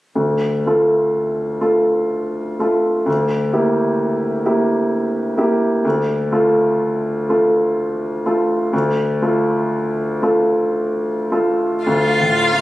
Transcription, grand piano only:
0.15 D2
0.66 A3 F4 A4
1.61 A3 F4 A4
2.59 A3 F4 A4
3.06 D2
3.53 A#3 E4 G4
4.45 A#3 E4 G4
5.38 A#3 E4 G4
5.85 D2
6.32 A3 F4 A4
7.29 A3 F4 A4
8.26 A3 F4 A4
8.73 D2
9.22 A3 F4 A4
10.22 A3 F4 A4
11.31 A3 F4 A4
11.86 D2
12.20 A2
12.52 A3

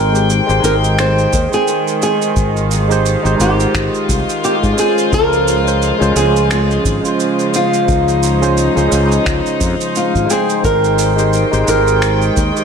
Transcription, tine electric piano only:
0.12 G#3 D#4 G4 C5
0.47 G#3 D#4 G4 C5
0.60 G#3 D#4
0.65 G4 C5
1.49 G#3 D#4
1.54 C5 G5
2.88 G#3 D#4 G4 C5
3.23 G#3 D#4 G4 C5
3.35 G#3 D#4
3.40 G4 C5
4.73 G#3 C#4
4.78 F4 C5
5.64 G#3 C#4 F4 C5
5.98 G#3 C#4 F4 C5
6.12 G#3 C#4
6.17 F4 C5
7.01 G#3 C#4
7.05 F4 C5
8.40 G#3 C#4 F4 C5
8.75 G#3 C#4 F4 C5
8.88 G#3 C#4
8.93 F4 C5
10.25 G#3 D#4
10.30 C5 G5
11.16 G#3 D#4 G4 C5
11.50 G#3 D#4 G4 C5
11.64 G#3 D#4
11.68 G4 C5
12.52 G#3 D#4
12.57 G4 C5

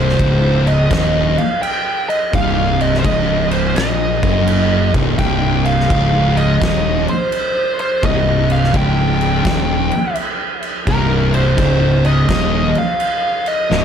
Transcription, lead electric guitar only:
Already playing: C5
0.68 D#5
1.38 F5
1.62 G5
2.09 D#5
2.35 F5
2.81 D#5
3.00 C5
3.05 D#5
3.52 C5
3.77 D#5
5.19 G5
5.66 F5
6.37 D#5
7.09 C5
7.80 C5
8.05 D#5
8.52 F5
8.77 G5
10.89 A#4
11.35 C5
12.06 D#5
12.78 F5
13.48 D#5

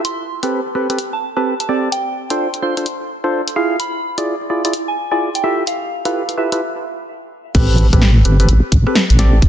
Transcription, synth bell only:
0.05 C6
1.13 A5
1.36 A5
1.60 A5
1.92 G5
2.30 G5
2.62 C6
3.80 B5
4.88 G#5
5.12 G#5
5.35 G5
5.67 F5
6.05 F5
6.38 E5

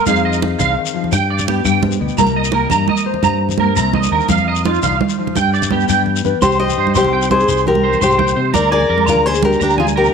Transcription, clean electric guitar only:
0.07 F5
0.25 D#5
0.59 F5
1.13 G5
1.30 D5
1.48 G4
1.65 G5
2.18 A#5
2.36 D#5
2.53 A#4
2.71 A#5
2.89 D#5
3.24 A#5
3.60 A#4
3.76 A#5
3.95 D#5
4.12 A#4
4.30 F5
4.48 D#5
4.66 F4
4.83 F5
5.37 G5
5.54 D5
5.72 G4
5.89 G5
6.42 C6
6.60 muted clean electric guitar stroke
6.78 C5
6.95 C6
7.13 G5
7.49 C6
7.83 C5
8.01 C6
8.18 G5
8.36 C5
8.54 A#5
8.71 G#5
8.89 A#4
9.07 A#5
9.60 A#5
9.78 G#5
9.96 A#4

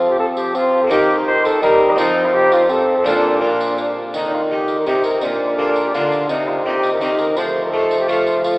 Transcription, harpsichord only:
Already playing: F3 A3 C4 F4
0.87 A#3 D#4 G4
0.91 D#3
1.63 G3
1.96 F3 C4 F4
3.04 A#2 D4 F4
3.41 D4 F4
4.16 D#3
4.52 D#4
4.87 C3 D#4
5.23 A#2
5.59 A#3 D4 F4
5.95 D3 A#3 D4 F4
6.29 C3
6.66 C4 D#4
7.01 D#3 C4 D#4
7.38 F3
7.73 A3 F4
8.08 A3 F4

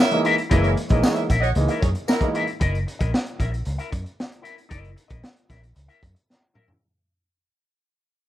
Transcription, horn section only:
Already playing: A#4 C#5
0.00 E4 E5
0.62 E4 A#4 C#5 E5
0.88 E4 A#4 C#5 E5
1.02 C#4 G#4 A#4 C#5
1.13 E4 A#4 C#5 E5
1.40 F#4 C#5 D#5 F#5
1.79 C#4 G#4 A#4 C#5
2.07 A#3 E4 A#4

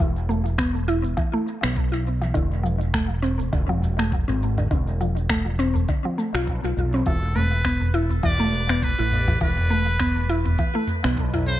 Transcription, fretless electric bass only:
0.00 E1
1.64 B1
2.35 E1
3.53 E1
4.28 G#1
4.71 E1
6.34 B1
6.64 B1
6.77 B1
7.06 E1
8.24 E1
8.99 A1
9.41 E1
11.04 B1

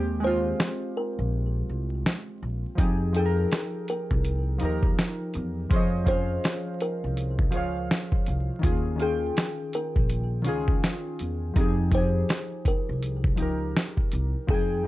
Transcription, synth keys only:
Already playing: G#3 C4 G4
0.20 G#3 C4
0.27 F4
2.75 F3 D#4
2.80 G4 G#4
3.13 F3 D#4
3.17 A4 G5
3.26 A#4
4.58 F3 D#4
4.63 G4 A#4
5.70 F3 F4 G#4 C5
5.75 C#5 D#5
6.04 F3 F4 G#4
6.08 C#4 C5 F5
7.51 F3 F4 G#4 C5
7.56 C#5 F5
8.59 D#3 C#4
8.63 F4 G#4
8.96 D#3 C#4
9.00 F4 G5
10.42 D#3 C#4
10.46 F4 G#4
11.54 F3 D#4
11.58 G4 G#4
11.91 F3 D#4
11.95 G4 G#4
13.36 F3 D#4
13.40 G4 A#4
14.47 F3 D#4
14.52 G#4 G5
14.83 F3

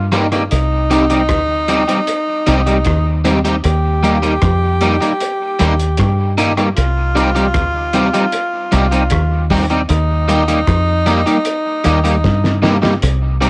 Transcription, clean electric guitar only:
0.12 G3 A#3 D#4 G4
0.32 G3 A#3 D#4 G4
0.90 G3 C4 D#4 G4
1.10 G3 C4 D#4 G4
1.68 G3 C4 D#4 G4
1.88 G3 C4 D#4 G4
2.47 G3 C4 D#4 G4
2.66 G3 C4 D#4 G4
3.24 G3 C4 D#4 G4
3.45 G3 C4 D#4 G4
4.03 G3 A#3 D#4 G4
4.22 G3 A#3 D#4 G4
4.81 G3 A#3 D#4 G4
5.01 G3 A#3 D#4 G4
5.59 G3 A#3 D#4 G4
6.38 G3 A#3 D#4 G4
6.57 G3 A#3 D#4 G4
7.15 G3 C4 D#4 G4
7.35 G3 C4 D#4 G4
7.94 G3 C4 D#4 G4
8.13 G3 C4 D#4 G4
8.72 G3 C4 D#4 G4
8.91 G3 C4 D#4 G4
9.50 G3 C4 D#4 G4
9.70 G3 C4 D#4 G4
10.28 G3 A#3 D#4 G4
10.48 G3 A#3 D#4 G4
11.06 G3 A#3 D#4 G4
11.26 G3 A#3 D#4 G4
11.84 G3 A#3 D#4 G4
12.04 G3 A#3 D#4 G4
12.62 G3 A#3 D#4 G4
12.82 G3 A#3 D#4 G4
13.41 G3 C4 D#4 G4

